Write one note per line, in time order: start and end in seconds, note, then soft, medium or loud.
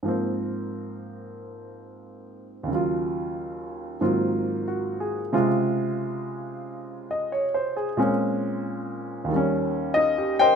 0.03 2.68 G#2 soft
0.03 2.69 F3 soft
0.03 2.70 A#3 soft
0.08 2.71 C4 soft
2.63 3.98 D#2 soft
2.68 4.00 C#3 soft
2.68 4.00 F#3 soft
2.75 4.01 F4 soft
4.01 5.33 G#2 soft
4.01 5.33 D#3 soft
4.01 5.33 F#3 soft
4.01 5.34 A#3 soft
4.01 5.33 C4 soft
4.01 5.33 F4 soft
4.68 5.19 F#4 soft
5.00 5.46 G#4 soft
5.33 7.98 C3 soft
5.33 7.97 C#3 soft
5.33 7.97 G#3 soft
5.33 7.98 F4 medium
7.11 7.44 D#5 soft
7.32 7.73 C#5 soft
7.54 7.88 C5 soft
7.77 8.10 G#4 soft
7.97 9.29 A#2 medium
7.97 9.30 G#3 soft
7.97 9.30 C4 soft
7.97 9.30 C#4 medium
9.24 10.55 D#2 soft
9.29 10.55 D#3 soft
9.29 10.55 G3 soft
9.36 10.55 C#4 medium
9.94 10.37 D#4 soft
9.94 10.36 D#5 medium
10.18 10.52 G4 soft
10.39 10.55 A#4 soft
10.39 10.55 C5 medium
10.39 10.55 D#5 medium
10.39 10.55 G5 medium